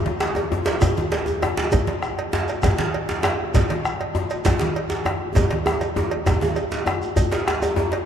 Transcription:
0.06 djembe slap, high conga
0.20 bombo rim, djembe slap, shekere
0.35 cowbell, djembe tone
0.52 djembe tone
0.66 cowbell, djembe slap, shekere
0.67 djembe slap
0.81 bombo rim, bombo low, cowbell, djembe tone, low conga, djembe bass, shekere
0.97 djembe slap, high conga, shekere
1.12 cowbell, djembe slap
1.26 djembe tone, shekere
1.42 bombo rim, cowbell, djembe tone
1.57 djembe slap
1.72 bombo low, cowbell, djembe tone, djembe bass, low conga, shekere
1.87 cowbell, djembe slap, high conga
2.02 bombo rim, djembe slap, shekere
2.19 cowbell
2.33 djembe slap, djembe tone
2.48 cowbell, djembe slap, shekere
2.63 bombo rim, bombo low, cowbell, djembe slap, low conga, djembe bass, shekere
2.78 bombo rim, djembe slap, high conga, shekere
2.94 cowbell
3.09 djembe slap, shekere
3.23 bombo rim, cowbell, djembe slap, djembe tone
3.40 djembe slap
3.54 bombo low, cowbell, djembe slap, djembe bass, low conga, shekere
3.70 cowbell, djembe slap, high conga
3.85 bombo rim, djembe slap, shekere
4.01 cowbell
4.15 djembe tone
4.30 cowbell, djembe slap, shekere
4.45 bombo rim, bombo low, cowbell, djembe slap, low conga, djembe bass, shekere
4.59 djembe slap, shekere
4.61 bombo rim, djembe slap, high conga
4.76 cowbell
4.90 djembe slap, shekere
5.05 bombo rim, cowbell, djembe tone
5.21 djembe slap
5.35 bombo low, cowbell, djembe slap, djembe tone, high conga, djembe bass, low conga, shekere
5.51 cowbell, djembe slap, high conga
5.66 bombo rim, djembe slap, djembe tone
5.81 bombo rim, cowbell, high conga, shekere
5.96 djembe slap, djembe tone, high conga
6.11 cowbell, high conga
6.26 bombo rim, bombo low, cowbell, high conga, djembe tone, djembe bass, low conga, shekere
6.41 djembe slap, djembe tone, high conga
6.56 cowbell, high conga, shekere
6.72 djembe slap, high conga, shekere
6.86 bombo rim, cowbell, djembe tone, shekere
7.02 bombo rim, shekere
7.16 bombo low, cowbell, djembe bass, shekere
7.32 cowbell, djembe slap, shekere
7.48 bombo rim, djembe slap
7.62 cowbell, djembe tone, shekere
7.76 djembe tone
7.92 cowbell, djembe slap

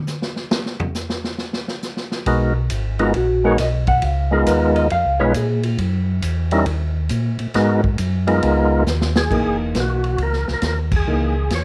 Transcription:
0.07 snare, hi-hat pedal
0.22 snare
0.36 snare
0.51 snare
0.66 snare
0.80 floor tom
0.95 snare, hi-hat pedal
1.10 snare
1.24 snare
1.38 snare
1.53 snare
1.68 snare
1.82 snare, hi-hat pedal
1.97 snare
2.12 snare
2.26 B1 G#3 B3 D#4 F#4 A#4, kick, ride
2.70 G#1, kick, hi-hat pedal, ride
2.99 G#3 B3 D#4 F4 F#4 A#4, ride
3.14 A#1 F#4, kick, ride
3.44 G#3 B3 D#4 F#4 A#4 C#5
3.58 B1 D#5, kick, snare, hi-hat pedal, ride
3.87 F#5, kick, ride
4.02 C#2 F5, kick, ride
4.31 G#3 B3 D#4 F4 G#4 A#4
4.46 D#2 B4, kick, hi-hat pedal, ride
4.76 D#5, ride
4.90 F2 F5, kick, ride
5.06 C#2
5.19 B1 G#3 B3 D#4 F4 B4 C#5
5.34 A#2 G#4, kick, hi-hat pedal, ride
5.63 F4, ride
5.78 F#2 E4, kick, ride
6.22 E2, kick, hi-hat pedal, ride
6.51 G3 C#4 D#4 E4 A#4, ride
6.66 D#2, kick, ride
7.09 A#2, kick, hi-hat pedal, ride
7.39 A#2, ride
7.54 G#2 G#3 B3 D#4 F#4 A#4, kick, snare, ride
7.84 kick
7.98 F#2, kick, hi-hat pedal, ride
8.27 G#3 B3 D#4 F4 A#4, ride
8.43 C#2, kick, ride
8.86 D#2, snare, hi-hat pedal
9.01 snare
9.16 G#4, snare
9.30 A#1 E3 A#3 D#4, kick, crash
9.46 F#1
9.60 E1
9.74 B1, kick, snare, hi-hat pedal, ride
9.80 F#4
10.04 ride
10.18 C#2, kick, ride
10.23 A#4
10.33 snare
10.48 C#2, snare
10.53 A#4
10.62 D#2, kick, snare, hi-hat pedal, ride
10.67 A#4
10.91 kick, crash
10.96 G#4
11.07 C#2 E3 A#3 D#4
11.50 E2, kick, snare, hi-hat pedal, ride
11.55 C#5

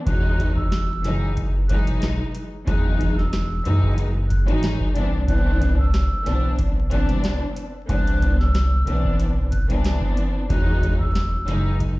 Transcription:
0.05 E1 E3 F#3 G#3 D#4 F#6, kick, closed hi-hat
0.39 kick, closed hi-hat
0.56 E6, kick
0.72 snare, closed hi-hat
1.03 F#1 E3 F#3 G#3 D#4, snare, closed hi-hat
1.37 kick, closed hi-hat
1.69 E3 F#3 G#3 D#4 F#6, kick, closed hi-hat
1.87 B1, closed hi-hat
2.02 snare, closed hi-hat
2.35 closed hi-hat
2.65 E1 E3 F#3 G#3 D#4 F#6, kick, closed hi-hat
3.00 kick, closed hi-hat
3.18 E6, snare
3.33 snare, closed hi-hat
3.64 F#1 E3 F#3 G#3 D#4, closed hi-hat
3.83 kick
3.98 closed hi-hat
4.29 F#6, kick, closed hi-hat
4.47 G#1 E3 F#3 G#3 D#4, closed hi-hat
4.63 snare, closed hi-hat
4.80 kick
4.94 C2 E3 B3 C4 D4, closed hi-hat
5.26 E3 B3 C4 D4 F#6, kick, closed hi-hat
5.61 kick, closed hi-hat
5.79 E6, kick
5.94 snare, closed hi-hat
6.24 B1 E3 B3 C4 D4, snare, closed hi-hat
6.59 kick, closed hi-hat
6.89 E3 B3 C4 D4 F#6, kick, closed hi-hat
7.09 C2, closed hi-hat
7.24 snare, closed hi-hat
7.56 closed hi-hat
7.88 C2 E3 B3 C4 D4 F#6, kick, closed hi-hat
8.07 closed hi-hat
8.22 kick, closed hi-hat
8.39 E6, snare
8.55 snare, closed hi-hat
8.86 B1 E3 B3 C4 D4, closed hi-hat
9.05 kick
9.20 closed hi-hat
9.52 F#6, kick, closed hi-hat
9.68 C2 E3 B3 C4 D4, closed hi-hat
9.84 snare, closed hi-hat
10.02 kick
10.17 closed hi-hat
10.48 E1 E3 F#3 G#3 D#4 F#6, kick, closed hi-hat
10.83 kick, closed hi-hat
10.99 E6, kick
11.15 snare, closed hi-hat
11.46 F#1 E3 F#3 G#3 D#4, snare, closed hi-hat
11.80 kick, closed hi-hat

